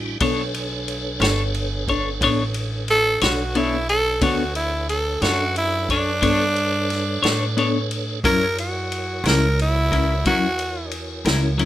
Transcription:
0.00 0.17 A1 medium
0.00 0.18 G3 medium
0.00 0.18 D4 medium
0.00 0.18 E4 medium
0.00 0.18 F#4 medium
0.20 1.18 B1 medium
0.20 0.41 B3 medium
0.20 0.41 D4 medium
0.20 0.41 A4 medium
0.20 4.19 B4 medium
0.20 0.42 C#5 medium
0.20 kick loud
0.20 ride medium
0.24 4.20 D4 medium
0.24 4.20 A4 medium
0.24 4.20 C#5 medium
0.54 ride medium
0.88 ride medium
1.20 2.18 G1 loud
1.20 1.43 D4 medium
1.20 1.42 A4 medium
1.20 1.42 C#5 medium
1.20 snare loud
1.20 ride medium
1.54 ride medium
1.88 2.09 D4 medium
1.88 2.09 A4 medium
1.88 2.09 C#5 medium
1.88 kick medium
1.88 ride medium
2.21 3.18 A1 medium
2.21 2.42 B3 medium
2.21 2.42 D4 medium
2.21 2.43 A4 medium
2.21 2.43 C#5 loud
2.21 kick medium
2.21 ride medium
2.54 ride medium
2.88 3.25 A4 loud
2.88 snare soft
2.88 ride medium
3.21 4.19 B1 medium
3.21 3.43 D4 soft
3.21 3.58 F#4 loud
3.21 3.42 A4 medium
3.21 3.42 C#5 medium
3.21 snare loud
3.21 ride medium
3.55 3.75 B3 medium
3.55 3.76 D4 medium
3.55 3.89 E4 loud
3.55 3.76 A4 medium
3.55 3.76 C#5 medium
3.55 ride medium
3.89 4.25 A4 loud
3.89 ride medium
4.20 5.19 D2 medium
4.20 4.42 B3 medium
4.20 8.20 D4 medium
4.20 4.42 D4 medium
4.20 4.55 F#4 loud
4.20 8.20 A4 medium
4.20 4.43 A4 medium
4.20 8.19 B4 medium
4.20 8.20 C#5 medium
4.20 4.43 C#5 medium
4.20 kick loud
4.20 ride medium
4.55 4.88 E4 loud
4.55 ride medium
4.89 5.23 A4 loud
4.89 ride medium
5.22 6.20 F#2 loud
5.22 5.44 D4 soft
5.22 5.55 F#4 loud
5.22 5.44 A4 medium
5.22 5.43 C#5 medium
5.22 snare loud
5.22 ride medium
5.56 5.89 E4 loud
5.56 ride medium
5.89 7.87 D4 loud
5.89 6.11 D4 medium
5.89 6.11 A4 medium
5.89 6.10 C#5 medium
5.89 kick medium
5.89 ride medium
6.22 7.20 G2 medium
6.22 6.43 B3 medium
6.22 6.43 D4 medium
6.22 6.43 A4 medium
6.22 6.43 C#5 medium
6.22 kick medium
6.22 ride medium
6.56 ride medium
6.90 snare soft
6.90 ride medium
7.22 8.21 A2 medium
7.22 7.44 D4 medium
7.22 7.44 A4 medium
7.22 7.43 C#5 medium
7.22 snare loud
7.22 ride medium
7.57 7.77 B3 medium
7.57 7.78 D4 medium
7.57 7.78 A4 medium
7.57 7.78 C#5 medium
7.57 ride medium
7.91 ride medium
8.23 9.21 F#2 medium
8.23 8.45 F#3 medium
8.23 8.45 C#4 medium
8.23 8.45 E4 medium
8.23 11.65 E4 medium
8.23 11.65 F#4 medium
8.23 8.57 A#4 loud
8.23 11.65 A#4 medium
8.23 8.45 A#4 medium
8.23 11.65 C#5 medium
8.23 kick loud
8.23 ride medium
8.58 9.24 F#4 medium
8.58 ride medium
8.92 ride medium
9.24 10.22 C#2 loud
9.24 9.46 E4 medium
9.24 9.46 A#4 medium
9.24 snare loud
9.24 ride medium
9.28 9.47 C#4 soft
9.28 9.59 A#4 loud
9.59 10.25 E4 loud
9.59 ride medium
9.92 10.13 C#4 soft
9.92 10.13 E4 medium
9.92 10.12 A#4 medium
9.92 kick medium
9.92 ride medium
10.25 11.23 E2 medium
10.25 10.46 F#3 medium
10.25 10.46 C#4 medium
10.25 10.46 E4 medium
10.25 10.91 F#4 loud
10.25 10.46 A#4 medium
10.25 kick medium
10.25 ride medium
10.59 ride medium
10.91 ride medium
11.25 11.65 C#2 loud
11.25 11.47 C#4 medium
11.25 11.47 E4 medium
11.25 11.46 A#4 medium
11.25 snare loud
11.25 ride medium
11.58 11.65 F#3 medium
11.58 11.65 C#4 medium
11.58 11.65 E4 medium
11.58 11.65 A#4 medium
11.58 ride medium

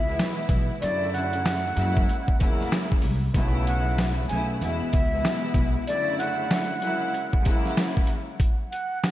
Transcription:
0.00 0.16 C#2 medium
0.00 0.35 E5 medium
0.06 0.77 B2 loud
0.06 0.77 E3 medium
0.06 0.77 G#3 medium
0.06 0.78 B3 medium
0.06 0.78 E4 loud
0.19 snare loud
0.19 closed hi-hat loud
0.49 0.67 B1 medium
0.49 kick loud
0.49 closed hi-hat medium
0.81 1.70 F#2 loud
0.81 1.73 F#2 loud
0.81 1.71 C#3 medium
0.81 1.71 D3 loud
0.81 1.71 F#3 medium
0.81 1.71 A3 medium
0.81 1.72 E4 loud
0.81 1.10 D5 loud
0.81 closed hi-hat loud
1.13 2.67 F#5 medium
1.13 closed hi-hat medium
1.33 closed hi-hat medium
1.46 snare loud
1.46 closed hi-hat loud
1.74 2.05 F#2 loud
1.74 2.22 C#3 loud
1.74 2.22 F#3 medium
1.74 2.23 G#3 medium
1.74 2.23 A#3 medium
1.74 2.23 E4 loud
1.74 closed hi-hat medium
1.97 kick loud
2.09 closed hi-hat medium
2.28 kick medium
2.38 2.69 E2 medium
2.38 3.14 C#3 loud
2.38 3.14 F#3 medium
2.38 3.15 G#3 medium
2.38 3.15 A#3 loud
2.38 3.15 E4 loud
2.38 kick loud
2.38 closed hi-hat medium
2.60 snare soft
2.72 snare loud
2.72 closed hi-hat loud
2.92 kick medium
3.02 3.31 C2 medium
3.02 open hi-hat soft
3.33 4.25 B1 loud
3.33 4.23 C#3 loud
3.33 4.23 F#3 medium
3.33 4.24 A3 loud
3.33 4.24 B3 loud
3.33 4.24 E4 loud
3.33 kick loud
3.33 closed hi-hat loud
3.67 3.95 F#5 medium
3.67 closed hi-hat medium
3.98 snare loud
3.98 closed hi-hat loud
4.28 4.58 B1 medium
4.28 4.60 C#3 medium
4.28 4.61 F#3 medium
4.28 4.61 A3 medium
4.28 4.61 B3 medium
4.28 4.61 E4 loud
4.28 4.47 G#5 medium
4.28 closed hi-hat medium
4.61 4.79 E2 loud
4.61 5.07 B2 loud
4.61 5.08 E3 medium
4.61 5.08 G#3 medium
4.61 5.08 B3 medium
4.61 5.09 E4 loud
4.61 closed hi-hat medium
4.81 muted upright bass stroke soft
4.92 5.21 C#2 medium
4.92 5.40 E5 medium
4.92 kick loud
4.92 closed hi-hat medium
5.11 5.82 B2 loud
5.11 5.82 E3 medium
5.11 5.83 G#3 medium
5.11 5.83 B3 medium
5.11 5.83 E4 loud
5.25 snare loud
5.25 snare medium
5.25 closed hi-hat loud
5.54 5.73 B1 medium
5.54 kick loud
5.54 closed hi-hat medium
5.86 6.76 F#2 loud
5.86 6.77 C#3 loud
5.86 6.76 D3 loud
5.86 6.76 F#3 medium
5.86 6.76 A3 medium
5.86 6.77 E4 loud
5.86 6.16 D5 loud
5.86 closed hi-hat loud
6.18 7.72 F#5 medium
6.18 closed hi-hat medium
6.51 snare loud
6.51 snare medium
6.51 closed hi-hat loud
6.79 7.27 C#3 loud
6.79 7.28 F#3 medium
6.79 7.28 G#3 loud
6.79 7.28 A#3 medium
6.79 7.28 E4 loud
6.79 closed hi-hat medium
7.14 closed hi-hat medium
7.33 kick medium
7.44 8.19 C#3 loud
7.44 8.20 F#3 loud
7.44 8.20 G#3 medium
7.44 8.20 A#3 loud
7.44 8.21 E4 loud
7.44 kick loud
7.44 closed hi-hat medium
7.66 snare soft
7.77 snare loud
7.77 snare medium
7.77 closed hi-hat loud
7.97 kick medium
8.07 closed hi-hat medium
8.40 kick loud
8.40 closed hi-hat loud
8.71 8.99 F#5 medium
8.71 closed hi-hat medium
9.04 snare loud
9.04 closed hi-hat loud

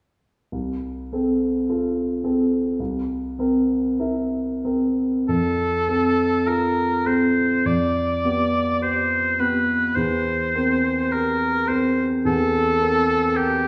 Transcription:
0.52 2.76 C2 soft
1.13 1.65 C4 soft
1.13 1.65 A4 soft
1.69 2.20 F4 soft
1.69 2.20 A4 soft
2.24 2.76 C4 soft
2.24 2.76 A4 soft
2.80 5.24 C2 soft
3.39 3.96 C4 soft
3.39 3.96 A#4 soft
4.00 4.61 E4 soft
4.00 4.60 A#4 soft
4.65 5.24 C4 soft
4.65 5.25 A#4 soft
5.29 7.62 F2 soft
5.29 6.49 A4 soft
5.88 6.44 C4 soft
5.88 6.44 A4 soft
6.46 7.02 F4 soft
6.46 7.03 A4 soft
6.46 7.08 A#4 soft
7.06 7.61 C4 soft
7.06 7.61 A4 soft
7.06 7.68 C5 soft
7.66 9.92 F2 soft
7.66 8.82 D5 soft
8.25 8.79 B3 soft
8.25 8.79 G4 soft
8.81 9.35 G4 soft
8.81 9.42 C5 soft
9.40 9.92 B3 soft
9.40 9.92 G4 soft
9.40 9.97 B4 soft
9.96 12.21 E2 soft
9.96 11.13 C5 soft
10.55 11.08 C4 soft
10.55 11.08 A#4 soft
11.12 11.65 G4 soft
11.12 11.69 A#4 soft
11.12 11.65 A#4 soft
11.67 12.21 C4 soft
11.67 12.21 A#4 soft
11.67 12.05 C5 soft
12.25 13.68 E2 soft
12.25 13.37 A4 medium
12.81 13.33 C4 soft
12.81 13.33 A#4 soft
13.36 13.68 G4 soft
13.36 13.68 A#4 soft

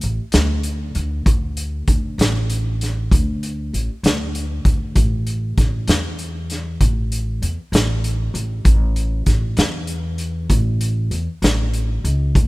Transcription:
0.01 0.17 A1 medium
0.01 closed hi-hat medium
0.32 0.91 D2 medium
0.32 snare loud
0.32 closed hi-hat medium
0.63 closed hi-hat medium
0.95 1.24 D2 medium
0.95 closed hi-hat medium
1.26 1.83 D2 medium
1.26 kick medium
1.26 closed hi-hat medium
1.57 closed hi-hat medium
1.88 2.16 D2 medium
1.88 kick medium
1.88 closed hi-hat medium
2.18 3.07 A1 medium
2.18 snare medium
2.18 closed hi-hat medium
2.50 closed hi-hat medium
2.81 snare soft
2.81 closed hi-hat medium
3.11 3.69 D2 loud
3.11 kick medium
3.11 closed hi-hat medium
3.43 closed hi-hat medium
3.73 3.87 A1 medium
3.73 closed hi-hat medium
4.03 4.61 D2 medium
4.03 snare loud
4.03 closed hi-hat medium
4.35 closed hi-hat medium
4.65 4.93 D2 medium
4.65 kick medium
4.65 closed hi-hat medium
4.95 5.53 A1 medium
4.95 kick medium
4.95 closed hi-hat medium
5.27 closed hi-hat medium
5.58 5.86 A1 medium
5.58 kick medium
5.58 snare soft
5.58 closed hi-hat medium
5.88 6.76 E2 medium
5.88 snare loud
5.88 closed hi-hat medium
6.19 closed hi-hat medium
6.50 snare soft
6.50 closed hi-hat medium
6.80 7.38 A1 loud
6.80 kick medium
6.80 closed hi-hat medium
7.12 closed hi-hat medium
7.42 7.56 E2 medium
7.42 closed hi-hat medium
7.72 8.30 A1 medium
7.72 snare loud
7.72 closed hi-hat medium
8.04 closed hi-hat medium
8.34 8.63 A1 medium
8.34 closed hi-hat medium
8.65 9.23 A1 medium
8.65 kick medium
8.65 closed hi-hat medium
8.96 closed hi-hat medium
9.26 9.56 A1 medium
9.26 kick medium
9.26 snare soft
9.26 closed hi-hat medium
9.57 10.46 E2 medium
9.57 snare medium
9.57 closed hi-hat medium
9.87 closed hi-hat soft
10.18 closed hi-hat medium
10.49 11.08 A1 loud
10.49 kick medium
10.49 closed hi-hat medium
10.81 closed hi-hat medium
11.11 11.26 E2 medium
11.11 closed hi-hat medium
11.42 12.00 A1 medium
11.42 snare loud
11.42 closed hi-hat medium
11.74 closed hi-hat medium
12.04 12.33 C#2 medium
12.04 closed hi-hat medium
12.35 12.48 D2 medium
12.35 kick medium
12.35 closed hi-hat medium

